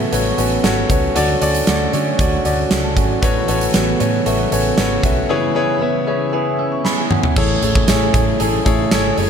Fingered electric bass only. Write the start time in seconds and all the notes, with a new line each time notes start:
0.12 A1
0.38 A1
0.64 G#1
0.90 C#2
1.16 D2
1.42 D2
1.68 D2
1.93 D3
2.19 D2
2.45 D2
2.71 C#2
2.97 G#1
3.23 A1
3.49 A1
3.75 A1
4.00 A2
4.26 A1
4.52 A1
4.78 G#1
5.03 B1
7.37 A1
7.62 A1
7.88 A1
8.14 A2
8.40 A1
8.66 A1
8.92 G#1
9.18 F#1